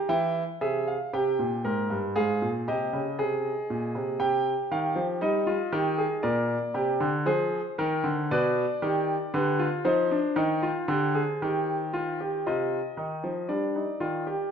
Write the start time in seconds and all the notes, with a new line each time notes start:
0.09 E3 E4 G5
0.61 C3 G#4 E5
0.88 F5
1.13 C3 G4 G5
1.39 A#2
1.65 G#2 A#4
1.90 G2
2.16 G#2 G#4 F5
2.42 A#2
2.68 C3 G4 D#5
2.93 C#3
3.19 C3 G#4
3.70 A#2
3.95 C3
4.20 C3 G4 G5
4.71 D#3 F5
4.96 F3
5.21 G3 D#4 D#5
5.47 F4
5.72 D#3 G4
5.98 G#4
6.23 A#2 A#4 D5
6.74 C3 G4
7.00 D3
7.26 F3 G#4 C5
7.78 D#3 A#4
8.04 D3
8.31 B2 B4 D5
8.82 D#3 G4
9.34 D3 G4 B4
9.59 F4
9.85 F3 D#4 C5
10.11 D4
10.36 D#3 D#4
10.62 F4
10.88 D3 G4
11.15 G#4
11.42 D#3 G4
11.93 F4
12.20 G4
12.46 C3 F4 D#5
12.97 D#3 D#4
13.24 F3
13.49 G3 D4 D5
13.76 D#4
14.00 D#3 F4
14.27 G4